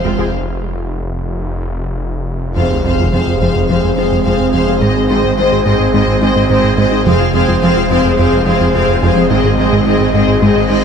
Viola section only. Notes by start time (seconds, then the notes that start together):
0.05 C4 F4
0.19 C4 G#4
2.57 C4 G#4
2.85 C4 G#4
3.13 C4 G#4
3.42 C4 G#4
3.69 C4 G#4
3.97 C4 G#4
4.25 C4 G#4
4.53 C4 G#4
4.82 C4 G#4
5.10 C4 G#4
5.38 C4 G#4
5.65 C4 G#4
5.94 C4 G#4
6.21 C4 G#4
6.50 C4 G#4
6.78 C4 G#4
7.05 C4 G#4
7.34 C4 G#4
7.62 C4 G#4
7.90 C4 G#4
8.18 C4 G#4
8.46 C4 G#4
8.74 C4 G#4
9.02 C4 G#4
9.30 C4 G#4
9.58 C4 G#4
9.86 C4 G#4
10.14 C4 G#4
10.42 C4 G#4
10.70 C4 G#4